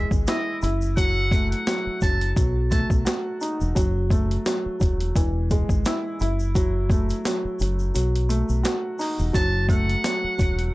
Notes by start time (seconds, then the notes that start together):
Already playing: E3 G#3
0.11 G#1, kick, shaker
0.27 E4 D#5, snare, closed hi-hat, shaker
0.62 F#1 E4, closed hi-hat, shaker
0.82 shaker
0.97 F#3 F#5, kick, closed hi-hat, shaker
1.31 A3, kick, closed hi-hat, shaker
1.51 F#5, closed hi-hat
1.67 F#3, snare, closed hi-hat, shaker
1.87 muted fingered electric bass stroke
2.01 F#1 F#3 A5, kick, closed hi-hat, shaker
2.21 closed hi-hat
2.36 B1 F#3, kick, closed hi-hat, shaker
2.71 A3 A5, kick, closed hi-hat, shaker
2.90 B1, kick, shaker
3.05 F#4, snare, closed hi-hat, shaker
3.41 D#4, closed hi-hat, shaker
3.61 E1, shaker
3.75 F#1 F#3, kick, closed hi-hat, shaker
4.10 A3, kick, closed hi-hat, shaker
4.31 closed hi-hat
4.46 F#3, snare, closed hi-hat, shaker
4.66 muted fingered electric bass stroke
4.80 E1 F#3, kick, closed hi-hat, shaker
5.00 closed hi-hat
5.16 E1 E3, kick, closed hi-hat, shaker
5.51 G#3, kick, closed hi-hat, shaker
5.69 G#1, kick, shaker
5.85 E4, snare, closed hi-hat, shaker
6.20 F#1 E4, closed hi-hat, shaker
6.40 shaker
6.55 F#3, kick, closed hi-hat, shaker
6.90 A3, kick, closed hi-hat, shaker
7.09 closed hi-hat, shaker
7.25 F#3, snare, closed hi-hat, shaker
7.45 muted fingered electric bass stroke
7.59 F#1 F#3, closed hi-hat, shaker
7.79 shaker
7.94 B1 F#3, closed hi-hat, shaker
8.15 closed hi-hat
8.29 A3, closed hi-hat, shaker
8.49 B1, shaker
8.63 F#4, snare, closed hi-hat, shaker
8.99 D#4, open hi-hat, shaker
9.19 E1, shaker
9.33 F#1 F#3 A5, kick, closed hi-hat, shaker
9.69 A3 F#5, kick, closed hi-hat, shaker
9.89 closed hi-hat
10.04 F#3, snare, closed hi-hat, shaker
10.24 muted fingered electric bass stroke
10.38 E1 F#3, kick, closed hi-hat, shaker
10.59 closed hi-hat